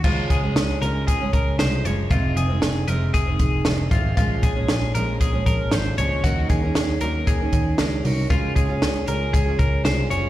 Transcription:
<<
  \new Staff \with { instrumentName = "Clean electric guitar" } { \time 4/4 \key des \major \tempo 4 = 116 f'8 aes'4 bes'8 aes'8 bes'8 c''8 des''8 | f'8 aes'4 bes'8 aes'4. f'8 | f'8 aes'4 bes'8 aes'8 bes'8 c''8 des''8 | ges'8 aes'4 bes'8 aes'4. ges'8 |
f'8 aes'4 bes'8 aes'8 bes'8 c''8 des''8 | }
  \new Staff \with { instrumentName = "Steel-string acoustic guitar" } { \clef bass \time 4/4 \key des \major <des f aes des'>8. <f aes des'>8. <des f aes des'>8. <f aes des'>8. <des f aes des'>8 <des f aes des'>8 | <f, c ees aes c'>8. <ees aes c'>8. <c ees aes c'>8. <ees aes c'>8. <c ees aes c'>8 <c ees aes c'>8 | <bes, f aes des'>8. <f aes des'>8. <bes, f aes des'>8. <f aes des'>8. <bes, f aes des'>8 <bes, f aes des'>8 | <ees ges des' ees' bes'>8. <des' ees' bes'>8. <ges des' ees' bes'>8. <des' ees' bes'>8. <ges des' ees' bes'>8 <ges des' ees' bes'>8 |
<des aes des' f' aes'>8. <des' f' aes'>8. <aes des' f' aes'>8. <des' f' aes'>8. <aes des' f' aes'>8 <aes des' f' aes'>8 | }
  \new Staff \with { instrumentName = "Picked electric bass" } { \clef bass \time 4/4 \key des \major des,8 des,8 des,8 des,8 des,8 des,8 c,8 ges,,8 | f,,8 f,,8 f,,8 f,,8 f,,8 f,,8 f,,8 aes,,8 | bes,,8 bes,,8 bes,,8 bes,,8 bes,,8 bes,,8 aes,,8 des,8 | ees,8 ees,8 r8 ees,8 ees,8 ees,8 des,8 c,8 |
des,8 des,8 des,8 des,8 des,8 des,8 c,8 ges,,8 | }
  \new DrumStaff \with { instrumentName = "Drums" } \drummode { \time 4/4 <cymc bd>8 <hh bd>8 <hh sn>8 hh8 <hh bd>8 <hh bd>8 <hh sn>8 hh8 | <hh bd>8 hh8 <hh sn>8 hh8 <hh bd>8 <hh bd>8 <hh sn>8 <hh bd>8 | <hh bd>8 <hh bd>8 <hh sn>8 hh8 <hh bd>8 <hh bd>8 <hh sn>8 hh8 | <hh bd>8 <hh bd>8 <hh sn>8 hh8 <hh bd>8 <hh bd>8 <hh sn>8 hho8 |
<hh bd>8 <hh bd>8 <hh sn>8 hh8 <hh bd>8 <hh bd>8 <hh sn>8 hh8 | }
>>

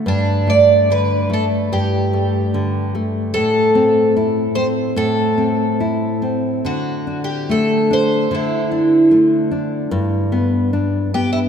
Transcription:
<<
  \new Staff \with { instrumentName = "Twelve-string acoustic guitar" } { \time 2/4 \key g \major \tempo 4 = 73 d'8 d''8 b'8 a'8 | g'4. r8 | a'4 r8 c''8 | a'4. r8 |
\tuplet 3/2 { fis'4 g'8 } a'8 c''8 | e'4 r4 | r4. g'16 e'16 | }
  \new Staff \with { instrumentName = "Nylon-string guitar" } { \time 2/4 \key g \major g,8 a8 d8 a8 | g,8 a8 d8 a8 | a,8 c'8 e'8 c'8 | a,8 c'8 e'8 c'8 |
d8 d'8 a8 d'8 | d8 d'8 a8 d'8 | g,8 b8 d'8 b8 | }
>>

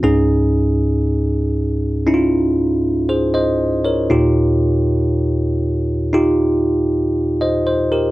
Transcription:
<<
  \new Staff \with { instrumentName = "Tine electric piano" } { \time 4/4 \key des \lydian \tempo 4 = 59 << { r2. <aes' c''>16 <c'' ees''>8 <bes' des''>16~ | <bes' des''>16 r2. <c'' ees''>16 c''16 <g' bes'>16 | } \\ { <des' ees' aes'>2 <des' ees' fes' f'>2 | <ees' f' g'>2 <ees' f' g'>2 | } >> }
  \new Staff \with { instrumentName = "Tine electric piano" } { \clef bass \time 4/4 \key des \lydian <des, aes,>1 | <ees, bes,>1 | }
>>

